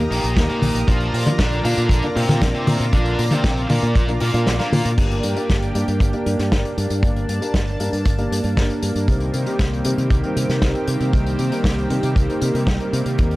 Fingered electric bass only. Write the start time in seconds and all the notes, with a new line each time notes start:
0.11 A#1
0.24 A#1
0.37 D#2
0.62 A#1
0.75 A#1
0.88 A#1
1.13 A#2
1.39 A#1
1.65 A#2
1.77 A#2
1.89 A#1
2.16 A#2
2.29 A#2
2.42 A#1
2.67 A#2
2.80 A#2
2.93 A#1
3.19 A#2
3.44 A#1
3.70 A#2
3.83 A#2
3.95 A#1
4.21 A#2
4.34 A#2
4.47 A#1
4.72 A#2
4.85 A#2
4.98 G1
5.24 G2
5.50 G1
5.75 G2
5.88 G2
6.00 G1
6.26 G2
6.39 G2
6.52 G1
6.77 G2
6.90 G2
7.03 G1
7.29 G2
7.54 G1
7.80 G2
7.93 G2
8.06 G1
8.31 G2
8.44 G2
8.57 G1
8.83 G2
8.95 G2
9.08 C2
9.34 C3
9.59 C2
9.85 C3
9.98 C3
10.10 C2
10.36 C3
10.49 C3
10.62 C2
10.87 C3
11.00 C3
11.13 C2
11.39 C3
11.64 C2
11.90 C3
12.03 C3
12.16 C2
12.42 C3
12.54 C3
12.67 C2
12.93 C3
13.06 C3
13.19 D#2